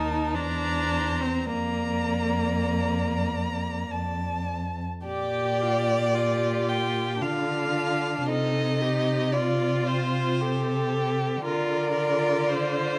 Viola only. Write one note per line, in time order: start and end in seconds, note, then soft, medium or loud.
0.00 0.36 D#4 medium
0.35 1.24 D4 medium
1.22 1.52 C4 medium
1.53 3.87 A#3 medium
5.06 5.63 G4 medium
5.61 6.15 F4 soft
6.15 7.23 G4 medium
7.22 8.28 F4 medium
8.29 8.83 A4 medium
8.81 9.35 G4 medium
9.34 10.43 F4 medium
10.41 11.45 A4 medium
11.46 12.50 A#4 medium
12.49 12.99 C5 medium